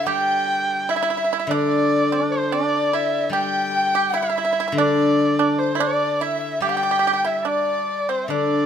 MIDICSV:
0, 0, Header, 1, 5, 480
1, 0, Start_track
1, 0, Tempo, 813008
1, 43, Time_signature, 4, 2, 24, 8
1, 2923, Tempo, 840336
1, 5041, End_track
2, 0, Start_track
2, 0, Title_t, "Dizi"
2, 0, Program_c, 0, 73
2, 44, Note_on_c, 0, 79, 77
2, 368, Note_off_c, 0, 79, 0
2, 528, Note_on_c, 0, 76, 74
2, 858, Note_off_c, 0, 76, 0
2, 875, Note_on_c, 0, 74, 71
2, 1332, Note_off_c, 0, 74, 0
2, 1354, Note_on_c, 0, 72, 55
2, 1466, Note_off_c, 0, 72, 0
2, 1485, Note_on_c, 0, 74, 72
2, 1938, Note_off_c, 0, 74, 0
2, 1962, Note_on_c, 0, 79, 84
2, 2457, Note_on_c, 0, 76, 74
2, 2466, Note_off_c, 0, 79, 0
2, 2776, Note_off_c, 0, 76, 0
2, 2776, Note_on_c, 0, 76, 48
2, 2816, Note_on_c, 0, 74, 73
2, 2825, Note_off_c, 0, 76, 0
2, 3135, Note_off_c, 0, 74, 0
2, 3287, Note_on_c, 0, 72, 67
2, 3404, Note_on_c, 0, 74, 74
2, 3413, Note_off_c, 0, 72, 0
2, 3449, Note_on_c, 0, 72, 57
2, 3458, Note_off_c, 0, 74, 0
2, 3485, Note_on_c, 0, 74, 71
2, 3493, Note_off_c, 0, 72, 0
2, 3640, Note_on_c, 0, 76, 71
2, 3649, Note_off_c, 0, 74, 0
2, 3875, Note_off_c, 0, 76, 0
2, 3882, Note_on_c, 0, 79, 83
2, 4239, Note_on_c, 0, 76, 67
2, 4248, Note_off_c, 0, 79, 0
2, 4320, Note_off_c, 0, 76, 0
2, 4320, Note_on_c, 0, 76, 47
2, 4362, Note_on_c, 0, 74, 63
2, 4370, Note_off_c, 0, 76, 0
2, 4720, Note_on_c, 0, 72, 60
2, 4729, Note_off_c, 0, 74, 0
2, 4795, Note_off_c, 0, 72, 0
2, 4799, Note_on_c, 0, 76, 45
2, 4839, Note_on_c, 0, 74, 54
2, 4848, Note_off_c, 0, 76, 0
2, 5041, Note_off_c, 0, 74, 0
2, 5041, End_track
3, 0, Start_track
3, 0, Title_t, "Erhu"
3, 0, Program_c, 1, 110
3, 56, Note_on_c, 1, 79, 89
3, 535, Note_on_c, 1, 76, 76
3, 544, Note_off_c, 1, 79, 0
3, 893, Note_on_c, 1, 74, 82
3, 901, Note_off_c, 1, 76, 0
3, 1368, Note_on_c, 1, 72, 74
3, 1377, Note_off_c, 1, 74, 0
3, 1487, Note_on_c, 1, 74, 85
3, 1496, Note_off_c, 1, 72, 0
3, 1734, Note_on_c, 1, 76, 76
3, 1743, Note_off_c, 1, 74, 0
3, 1965, Note_off_c, 1, 76, 0
3, 1969, Note_on_c, 1, 79, 77
3, 2463, Note_on_c, 1, 76, 82
3, 2472, Note_off_c, 1, 79, 0
3, 2823, Note_on_c, 1, 74, 78
3, 2832, Note_off_c, 1, 76, 0
3, 3286, Note_on_c, 1, 72, 72
3, 3295, Note_off_c, 1, 74, 0
3, 3410, Note_on_c, 1, 74, 81
3, 3418, Note_off_c, 1, 72, 0
3, 3650, Note_on_c, 1, 76, 75
3, 3658, Note_off_c, 1, 74, 0
3, 3880, Note_off_c, 1, 76, 0
3, 3888, Note_on_c, 1, 79, 85
3, 4247, Note_on_c, 1, 76, 66
3, 4255, Note_off_c, 1, 79, 0
3, 4364, Note_on_c, 1, 74, 67
3, 4372, Note_off_c, 1, 76, 0
3, 4716, Note_on_c, 1, 72, 66
3, 4724, Note_off_c, 1, 74, 0
3, 4834, Note_off_c, 1, 72, 0
3, 4837, Note_on_c, 1, 74, 66
3, 5041, Note_off_c, 1, 74, 0
3, 5041, End_track
4, 0, Start_track
4, 0, Title_t, "Pipa"
4, 0, Program_c, 2, 105
4, 39, Note_on_c, 2, 67, 72
4, 494, Note_off_c, 2, 67, 0
4, 526, Note_on_c, 2, 64, 60
4, 561, Note_off_c, 2, 64, 0
4, 568, Note_on_c, 2, 64, 53
4, 598, Note_off_c, 2, 64, 0
4, 605, Note_on_c, 2, 64, 63
4, 644, Note_off_c, 2, 64, 0
4, 650, Note_on_c, 2, 64, 54
4, 685, Note_off_c, 2, 64, 0
4, 692, Note_on_c, 2, 64, 50
4, 728, Note_off_c, 2, 64, 0
4, 735, Note_on_c, 2, 64, 52
4, 772, Note_off_c, 2, 64, 0
4, 784, Note_on_c, 2, 64, 66
4, 817, Note_off_c, 2, 64, 0
4, 824, Note_on_c, 2, 64, 52
4, 859, Note_off_c, 2, 64, 0
4, 891, Note_on_c, 2, 62, 76
4, 1220, Note_off_c, 2, 62, 0
4, 1253, Note_on_c, 2, 62, 66
4, 1468, Note_off_c, 2, 62, 0
4, 1490, Note_on_c, 2, 62, 72
4, 1706, Note_off_c, 2, 62, 0
4, 1732, Note_on_c, 2, 64, 62
4, 1949, Note_off_c, 2, 64, 0
4, 1966, Note_on_c, 2, 67, 69
4, 2300, Note_off_c, 2, 67, 0
4, 2331, Note_on_c, 2, 67, 72
4, 2438, Note_off_c, 2, 67, 0
4, 2442, Note_on_c, 2, 64, 67
4, 2481, Note_off_c, 2, 64, 0
4, 2494, Note_on_c, 2, 64, 49
4, 2528, Note_off_c, 2, 64, 0
4, 2536, Note_on_c, 2, 64, 57
4, 2570, Note_off_c, 2, 64, 0
4, 2585, Note_on_c, 2, 64, 48
4, 2616, Note_off_c, 2, 64, 0
4, 2625, Note_on_c, 2, 64, 53
4, 2658, Note_off_c, 2, 64, 0
4, 2672, Note_on_c, 2, 64, 45
4, 2703, Note_off_c, 2, 64, 0
4, 2716, Note_on_c, 2, 64, 66
4, 2746, Note_off_c, 2, 64, 0
4, 2762, Note_on_c, 2, 64, 53
4, 2791, Note_off_c, 2, 64, 0
4, 2824, Note_on_c, 2, 62, 72
4, 3149, Note_off_c, 2, 62, 0
4, 3175, Note_on_c, 2, 62, 69
4, 3352, Note_off_c, 2, 62, 0
4, 3381, Note_on_c, 2, 64, 54
4, 3409, Note_off_c, 2, 64, 0
4, 3410, Note_on_c, 2, 62, 81
4, 3625, Note_off_c, 2, 62, 0
4, 3643, Note_on_c, 2, 64, 65
4, 3860, Note_off_c, 2, 64, 0
4, 3877, Note_on_c, 2, 67, 70
4, 3909, Note_off_c, 2, 67, 0
4, 3916, Note_on_c, 2, 67, 50
4, 3954, Note_off_c, 2, 67, 0
4, 3961, Note_on_c, 2, 67, 56
4, 3990, Note_off_c, 2, 67, 0
4, 3997, Note_on_c, 2, 67, 51
4, 4036, Note_off_c, 2, 67, 0
4, 4043, Note_on_c, 2, 67, 63
4, 4081, Note_off_c, 2, 67, 0
4, 4089, Note_on_c, 2, 67, 51
4, 4126, Note_off_c, 2, 67, 0
4, 4135, Note_on_c, 2, 67, 64
4, 4163, Note_off_c, 2, 67, 0
4, 4170, Note_on_c, 2, 67, 59
4, 4209, Note_off_c, 2, 67, 0
4, 4234, Note_on_c, 2, 64, 66
4, 4344, Note_off_c, 2, 64, 0
4, 4350, Note_on_c, 2, 62, 57
4, 4692, Note_off_c, 2, 62, 0
4, 4716, Note_on_c, 2, 60, 55
4, 4829, Note_off_c, 2, 60, 0
4, 4837, Note_on_c, 2, 62, 55
4, 5041, Note_off_c, 2, 62, 0
4, 5041, End_track
5, 0, Start_track
5, 0, Title_t, "Guzheng"
5, 0, Program_c, 3, 107
5, 0, Note_on_c, 3, 50, 56
5, 35, Note_on_c, 3, 55, 50
5, 394, Note_off_c, 3, 50, 0
5, 867, Note_on_c, 3, 50, 60
5, 1472, Note_off_c, 3, 55, 0
5, 1945, Note_on_c, 3, 55, 52
5, 2315, Note_off_c, 3, 50, 0
5, 2787, Note_on_c, 3, 50, 61
5, 3392, Note_off_c, 3, 55, 0
5, 3868, Note_on_c, 3, 55, 53
5, 4223, Note_off_c, 3, 50, 0
5, 4825, Note_on_c, 3, 50, 50
5, 5041, Note_off_c, 3, 50, 0
5, 5041, Note_off_c, 3, 55, 0
5, 5041, End_track
0, 0, End_of_file